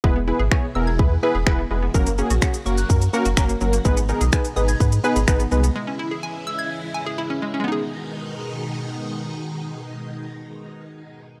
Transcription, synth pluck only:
\new Staff \with { instrumentName = "Synth pluck" } { \time 4/4 \key gis \minor \tempo 4 = 126 gis16 b16 e'16 gis'16 gis''16 r16 e'''16 gis'''16 r8 gis''16 gis'16 e'16 b16 gis16 b16 | fis16 ais16 cis'16 fis'16 fis''16 r16 cis'''16 fis'''16 r8 fis''16 fis'16 cis'16 ais16 fis16 ais16 | gis16 b16 dis'16 gis'16 gis''16 r16 dis'''16 gis'''16 r8 gis''16 gis'16 dis'16 b16 gis16 b16 | gis16 cis'16 e'16 gis'16 gis''16 r16 e'''16 gis'''16 r8 gis''16 gis'16 e'16 cis'16 gis16 cis'16 |
<gis b dis' gis'>1~ | <gis b dis' gis'>1 | }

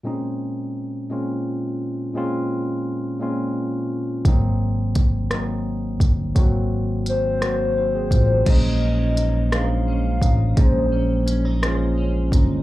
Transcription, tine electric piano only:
\new Staff \with { instrumentName = "Tine electric piano" } { \time 6/8 \key bes \minor \tempo 4. = 57 << { r2. | r2. | r2. | r2 <ees' c''>16 <c' aes'>16 <aes f'>16 <ges ees'>16~ |
<ges ees'>16 r2 r8. | r2. | } \\ { <bes, aes c' des' ees'>4 r8 <bes, aes c' des' f'>4 r8 | <bes, aes c' des' f'>4 r8 <bes, aes c' des' f'>4 r8 | <ges bes c' ees'>4 r8 <ges bes c' ees'>4 r8 | <ges bes c' ges'>4 r8 <ges bes c' ges'>8 r4 |
<aes des' ees' c''>4 r8 <aes des' d' ees' c''>4 r8 | <aes des' ees' c''>4 r8 <aes des' f' c''>4 r8 | } >> }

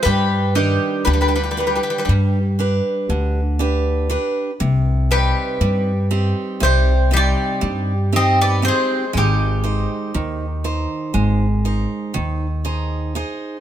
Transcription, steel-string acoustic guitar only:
\new Staff \with { instrumentName = "Steel-string acoustic guitar" } { \time 9/8 \tempo 4. = 40 g8 <d' g' b'>8 d8 <d' g' b'>8 g8 <d' g' b'>8 d8 <d' g' b'>8 <d' g' b'>8 | c8 <c' ees' g'>8 g8 <c' ees' g'>8 c8 <c' ees' g'>8 g8 <c' ees' g'>8 <c' ees' g'>8 | aes8 <ees' c''>8 ees8 <ees' c''>8 aes8 <ees' c''>8 ees8 <ees' aes' c''>8 <ees' aes' c''>8 | }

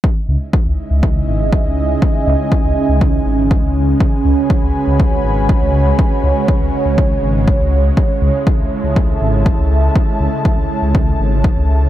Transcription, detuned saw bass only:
\new Staff \with { instrumentName = "Detuned saw bass" } { \clef bass \time 4/4 \key cis \minor \tempo 4 = 121 r8 cis,16 r8 cis,16 r16 cis,8 r16 gis,,8 r16 cis,8 r16 | r8 cis,16 r8 cis,16 r16 cis,8 r16 gis,,8 r16 cis,8 r16 | r8 cis,16 r8 cis,16 r16 cis,8 r16 gis,,8 r16 cis,8 r16 | r8 cis,16 r8 cis,16 r16 cis,8 r16 gis,,8 r16 cis,8 r16 |
r8 cis,16 r8 cis,16 r16 cis,8 r16 gis,,8 r16 cis,8 r16 | r8 cis,16 r8 cis,16 r16 cis,8 r16 gis,,8 r16 cis,8 r16 | }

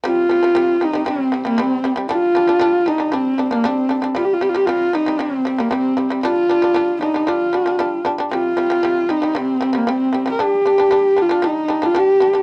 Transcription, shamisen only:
\new Staff \with { instrumentName = "Shamisen" } { \clef bass \time 4/4 \key c \minor \tempo 4 = 116 <c g>8 <c g>16 <c g>16 <c g>8 <c g>16 <c g>16 <c g>8 <c g>16 <c g>16 <c g>8 <c g>16 <c g>16 | <g d'>8 <g d'>16 <g d'>16 <g d'>8 <g d'>16 <g d'>16 <g d'>8 <g d'>16 <g d'>16 <g d'>8 <g d'>16 <g d'>16 | <c g>8 <c g>16 <c g>16 <c g>8 <c g>16 <c g>16 <c g>8 <c g>16 <c g>16 <c g>8 <c g>16 <c g>16 | <g d'>8 <g d'>16 <g d'>16 <g d'>8 <g d'>16 <g d'>16 <g d'>8 <g d'>16 <g d'>16 <g d'>8 <g d'>16 <g d'>16 |
<c g>8 <c g>16 <c g>16 <c g>8 <c g>16 <c g>16 <c g>8 <c g>16 <c g>16 <c g>8 <c g>16 <c g>16 | <g d'>8 <g d'>16 <g d'>16 <g d'>8 <g d'>16 <g d'>16 <g d'>8 <g d'>16 <g d'>16 <g d'>8 <g d'>16 <g d'>16 | }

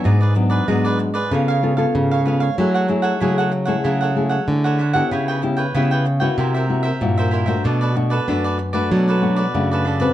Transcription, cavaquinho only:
\new Staff \with { instrumentName = "Cavaquinho" } { \time 4/4 \key cis \phrygian \tempo 4 = 95 <fis' gis' b' d''>16 <gis' b' d''>16 r16 <gis' b' d''>16 <fis' gis' b' d''>16 <gis' b' d''>16 r16 <gis' b' d''>16 <b' cis'' eis''>16 <cis'' eis''>8 <cis'' eis''>8 <cis'' eis''>16 <b' cis'' eis''>16 <cis'' eis''>16 | <e' a' cis'' fis''>16 <a' cis'' fis''>16 r16 <a' cis'' fis''>16 <e' a' cis'' fis''>16 <a' cis'' fis''>16 r16 <a' cis'' fis''>16 <e' a' cis'' fis''>16 <a' cis'' fis''>8 <a' cis'' fis''>8 <a' cis'' fis''>16 <e' a' cis'' fis''>16 <a' cis'' fis''>16 | <e' b' cis'' g''>16 <b' cis'' g''>16 r16 <b' cis'' g''>16 <e' b' cis'' g''>16 <b' cis'' g''>16 r16 <b' cis'' g''>16 <e' bes' c'' e''>16 <bes' c'' e''>8 <bes' c'' e''>8 <bes' c'' e''>16 <e' bes' c'' e''>16 <bes' c'' e''>16 | <d' a' b' d''>16 <a' b' d''>16 r16 <a' b' d''>16 <d' a' b' d''>16 <a' b' d''>16 r16 <a' b' d''>16 <d' a' b' d''>16 <a' b' d''>8 <a' b' d''>8 <a' b' d''>16 <d' a' b' d''>16 <a' b' d''>16 | }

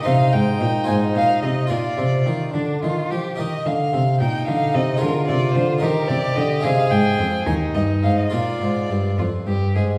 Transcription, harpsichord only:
<<
  \new Staff \with { instrumentName = "Harpsichord" } { \time 6/8 \key bes \mixolydian \tempo 4. = 73 <ees' c''>4. <f' c''>4. | <f' bes'>2. | <ees' bes'>2. | <aes f' bes'>4. <ees' bes'>4. |
<aes ees' aes'>2. | <f' bes'>2. | }
  \new Staff \with { instrumentName = "Harpsichord" } { \clef bass \time 6/8 \key bes \mixolydian c8 aes,8 bes,8 aes,8 bes,8 c8 | bes,8 c8 ees8 d8 ees8 f8 | ees8 d8 c8 bes,8 d8 c8 | d8 c8 d8 ees8 c8 d8 |
c8 aes,8 f,8 ees,8 g,8 aes,8 | bes,8 aes,8 g,8 f,8 g,8 aes,8 | }
>>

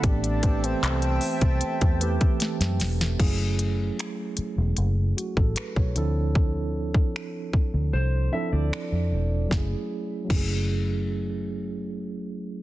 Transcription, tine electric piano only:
\new Staff \with { instrumentName = "Tine electric piano" } { \time 4/4 \key d \lydian \tempo 4 = 76 << { r1 | r2 r8 fis'16 a'16 b'16 cis''8 r16 | r1 | r1 | } \\ { <e a b c' g'>8 <e a c' g' b'>4. r8 <e a c' g' b'>4 r8 | <fis a cis' e' gis'>4. r2 <f c' d' e' a'>8~ | <f c' d' e' a'>4 r4. <f c' d' e' a'>4 r8 | <fis a cis' e' gis'>8 r8 <fis a cis' e' gis'>2. | } >> }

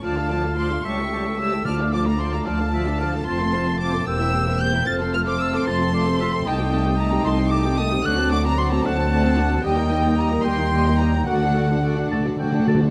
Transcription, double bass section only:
\new Staff \with { instrumentName = "Double bass section" } { \clef bass \time 6/8 \key d \minor \tempo 4. = 75 d,4. cis,4. | d,4. d,4. | f,,4. e,,4. | f,,4. f,,4. |
\key d \phrygian c,4. c,4. | d,4. d,4. | ees,4. ees,4. | d,4. d,4. | }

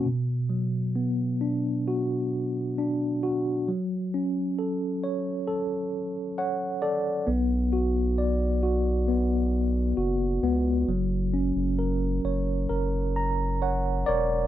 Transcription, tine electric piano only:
\new Staff \with { instrumentName = "Tine electric piano" } { \time 4/4 \key b \minor \tempo 4 = 66 << { r1 | r2. fis''8 d''8 | r1 | r2 r8 ais''8 fis''8 <cis'' d''>8 | } \\ { b,8 fis8 b8 d'8 fis'4 d'8 fis'8 | fis8 cis'8 a'8 cis''8 a'4 cis''8 a'8 | b8 fis'8 d''8 fis'8 b4 fis'8 b8 | fis8 cis'8 ais'8 cis''8 ais'4 cis''8 ais'8 | } >> }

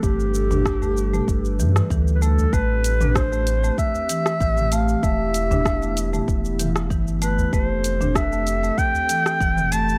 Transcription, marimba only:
\new Staff \with { instrumentName = "Marimba" } { \time 4/4 \key a \minor \tempo 4 = 96 a8. d'16 r16 a16 r16 a8. e16 r16 e8 a8 | a8. d'16 r16 a16 r16 a8. e16 r16 e8 a8 | a8. d'16 r16 a16 r16 a8. e16 r16 e8 a8 | a8. d'16 r16 a16 r16 a8. e16 r16 e8 a8 | }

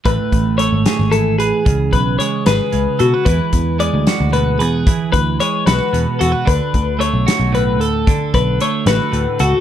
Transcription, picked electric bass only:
\new Staff \with { instrumentName = "Picked electric bass" } { \clef bass \time 6/8 \key a \major \tempo 4. = 75 a,,16 r16 a,,8. gis,,16 r16 gis,,8. a,,16 r16 | cis,8 b,,8 r8 gis,,16 r16 cis,16 r16 b,16 r16 | e,16 r16 e,8. d,16 r16 d,8. e,8 | r8 d,8 r8 b,,16 r16 e,16 r16 e,16 r16 |
d,16 r16 d,8. b,,16 r16 b,,8. d,8 | r8 b,,8 r8 a,,16 r16 d,16 r16 cis,16 r16 | }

